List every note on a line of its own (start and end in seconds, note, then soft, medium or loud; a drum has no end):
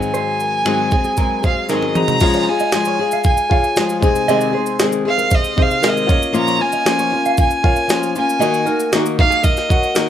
0.00 0.64 G#2 soft
0.00 0.64 D#3 medium
0.00 0.64 F#3 medium
0.00 0.66 G#3 medium
0.00 0.66 C4 medium
0.00 0.81 C4 medium
0.00 0.82 F#4 medium
0.00 0.67 G#4 medium
0.00 0.82 G#4 medium
0.00 0.82 D#5 medium
0.00 1.45 G#5 loud
0.00 shaker soft
0.14 0.41 C5 medium
0.14 shaker medium
0.40 0.65 A#4 medium
0.40 shaker soft
0.65 0.92 G#2 medium
0.65 0.92 D#3 medium
0.65 0.92 F#3 medium
0.65 0.92 G#3 medium
0.65 0.92 C4 loud
0.65 0.79 F#4 medium
0.65 0.91 G#4 medium
0.65 finger snap loud
0.65 shaker medium
0.92 1.16 F#3 soft
0.92 1.17 G#3 soft
0.92 1.18 C4 soft
0.92 1.18 G#4 medium
0.92 kick loud
0.92 shaker soft
1.05 1.17 G#4 medium
1.05 shaker soft
1.17 1.44 F#3 medium
1.17 1.43 G#3 medium
1.17 1.43 C4 medium
1.17 1.41 G#4 medium
1.17 1.43 A#4 medium
1.17 kick medium
1.17 shaker medium
1.42 1.68 F#3 soft
1.42 1.69 G#3 soft
1.42 1.69 C4 soft
1.42 1.69 G#4 medium
1.42 1.56 C5 medium
1.42 1.69 F5 medium
1.42 kick medium
1.42 shaker soft
1.68 2.21 G#2 medium
1.68 2.20 D#3 medium
1.68 2.20 F#3 medium
1.68 2.22 G#3 medium
1.68 2.22 C4 medium
1.68 2.22 G#4 medium
1.68 2.06 A#4 medium
1.68 1.97 D#5 medium
1.68 snare soft
1.68 shaker medium
1.83 high tom medium
1.95 2.19 C4 medium
1.95 2.19 F#4 medium
1.95 2.19 G#4 medium
1.95 2.20 D#5 medium
1.95 2.42 A#5 loud
1.95 mid tom medium
1.95 shaker soft
2.08 floor tom medium
2.08 shaker soft
2.20 2.47 C#3 medium
2.20 2.47 F3 medium
2.20 2.48 G#3 medium
2.20 3.14 F4 medium
2.20 2.47 F4 medium
2.20 3.14 G#4 medium
2.20 2.45 G#4 medium
2.20 3.15 C#5 medium
2.20 kick loud
2.20 crash loud
2.20 shaker medium
2.34 2.47 C#5 medium
2.34 shaker soft
2.42 2.51 A#5 medium
2.46 2.74 F4 soft
2.46 2.73 G#4 medium
2.46 3.25 G#5 loud
2.50 2.74 G#3 soft
2.60 2.73 D#5 medium
2.60 shaker medium
2.72 3.00 F3 medium
2.72 3.00 G#3 medium
2.72 3.00 F4 medium
2.72 snare loud
2.72 shaker medium
2.77 2.98 G#4 medium
2.85 2.99 C#5 medium
2.85 shaker medium
2.99 3.78 G#3 soft
2.99 3.77 F4 medium
2.99 3.79 G#4 medium
3.12 3.37 F5 medium
3.12 shaker medium
3.24 3.99 G#5 loud
3.24 kick loud
3.24 shaker medium
3.38 shaker medium
3.50 4.02 F4 medium
3.50 4.00 G#4 medium
3.50 4.03 C#5 medium
3.50 3.64 F5 medium
3.50 kick loud
3.64 shaker soft
3.76 4.03 F3 medium
3.76 4.04 G#3 medium
3.76 4.04 F4 medium
3.76 4.02 G#4 medium
3.76 snare loud
3.76 shaker medium
3.90 shaker soft
4.01 4.94 C3 medium
4.01 4.28 C4 medium
4.01 4.94 D#4 medium
4.01 4.94 G#4 medium
4.01 4.29 G#4 medium
4.01 4.95 C5 medium
4.01 4.76 G#5 medium
4.01 kick loud
4.01 shaker medium
4.06 4.28 G#3 soft
4.16 shaker medium
4.28 4.54 C3 medium
4.28 4.54 D#3 medium
4.28 4.55 G#3 medium
4.28 4.53 C4 medium
4.28 4.52 G#4 loud
4.28 4.53 D#5 loud
4.28 shaker medium
4.41 shaker soft
4.53 4.79 G#3 soft
4.53 4.80 C4 soft
4.53 4.80 G#4 medium
4.53 4.79 C5 medium
4.67 shaker medium
4.80 5.06 D#3 medium
4.80 5.06 G#3 medium
4.80 5.06 C4 medium
4.80 4.92 G#4 medium
4.80 5.04 G#4 medium
4.80 snare loud
4.80 shaker medium
4.93 shaker medium
5.05 5.81 G#3 soft
5.05 5.83 C4 medium
5.05 5.83 G#4 medium
5.05 5.36 F5 loud
5.18 5.31 A#4 medium
5.18 shaker medium
5.31 5.56 C5 medium
5.31 5.63 D#5 loud
5.31 kick loud
5.31 shaker medium
5.45 shaker medium
5.56 6.09 C3 medium
5.56 6.09 D#4 medium
5.56 6.09 G#4 medium
5.56 6.10 C5 medium
5.56 5.70 D#5 medium
5.56 kick loud
5.62 5.90 F5 loud
5.71 shaker soft
5.82 6.09 D#3 medium
5.82 6.09 G#3 medium
5.82 6.09 C4 medium
5.82 6.08 G#4 medium
5.82 6.20 A#4 medium
5.82 snare loud
5.82 shaker medium
5.89 6.37 D#5 loud
5.97 shaker soft
6.07 6.32 A#3 soft
6.07 6.33 C#4 medium
6.07 7.00 F4 medium
6.07 6.33 F4 medium
6.07 7.00 A#4 medium
6.07 7.01 C#5 loud
6.07 kick loud
6.07 shaker medium
6.23 shaker medium
6.33 6.60 A#2 medium
6.33 6.60 F3 medium
6.33 6.60 A#3 medium
6.33 6.60 C#4 loud
6.33 6.58 F4 loud
6.33 shaker medium
6.37 6.63 A#5 loud
6.48 6.60 C#5 medium
6.48 shaker soft
6.59 6.85 A#3 medium
6.59 6.85 C#4 medium
6.59 6.86 F4 medium
6.59 7.39 G#5 loud
6.73 6.86 D#5 medium
6.73 shaker medium
6.85 7.12 F3 medium
6.85 7.12 A#3 medium
6.85 7.12 C#4 medium
6.85 7.11 F4 medium
6.85 snare loud
6.85 shaker medium
6.99 7.12 C#5 medium
6.99 shaker medium
7.12 7.89 A#3 soft
7.12 7.89 C#4 medium
7.12 7.90 F4 medium
7.26 7.50 F5 medium
7.26 shaker medium
7.38 8.13 G#5 loud
7.38 kick loud
7.38 shaker medium
7.51 shaker medium
7.64 8.33 F4 medium
7.64 8.33 A#4 medium
7.64 8.34 C#5 medium
7.64 7.76 F5 medium
7.64 kick loud
7.77 shaker soft
7.88 8.15 F3 medium
7.88 8.16 A#3 medium
7.88 8.16 C#4 medium
7.88 8.15 F4 medium
7.88 snare loud
7.88 shaker medium
8.03 shaker soft
8.16 8.39 A#3 medium
8.16 8.40 C#4 medium
8.16 8.41 F4 medium
8.16 8.91 G#5 loud
8.16 shaker medium
8.30 shaker medium
8.39 8.66 D#3 medium
8.39 8.67 A#3 medium
8.39 8.65 D#4 medium
8.39 9.33 F#4 medium
8.39 8.64 F#4 medium
8.39 9.33 A#4 medium
8.39 8.66 D#5 loud
8.39 9.34 D#5 medium
8.39 shaker medium
8.54 shaker soft
8.65 8.93 A#3 soft
8.65 8.93 D#4 medium
8.65 8.92 F#4 medium
8.65 8.91 A#4 medium
8.65 shaker soft
8.80 shaker medium
8.92 9.19 D#3 medium
8.92 9.20 A#3 medium
8.92 9.19 D#4 medium
8.92 9.05 F#4 medium
8.92 snare loud
8.92 shaker medium
8.96 9.18 F#4 medium
9.06 shaker medium
9.19 9.95 A#3 soft
9.19 9.96 D#4 medium
9.19 9.96 F#4 medium
9.19 9.46 F5 loud
9.19 kick loud
9.30 9.42 G#4 medium
9.30 shaker medium
9.43 9.68 A#4 medium
9.43 10.09 D#5 loud
9.43 kick loud
9.43 shaker medium
9.57 snare soft
9.57 shaker medium
9.69 10.09 F#4 medium
9.69 10.09 A#4 medium
9.69 9.82 C#5 medium
9.69 10.09 F#5 medium
9.69 kick loud
9.69 shaker medium
9.84 shaker soft
9.95 10.09 D#3 medium
9.95 10.09 A#3 medium
9.95 10.09 D#4 medium
9.95 10.09 F#4 medium
9.95 10.09 A#4 medium
9.95 snare loud
9.95 shaker medium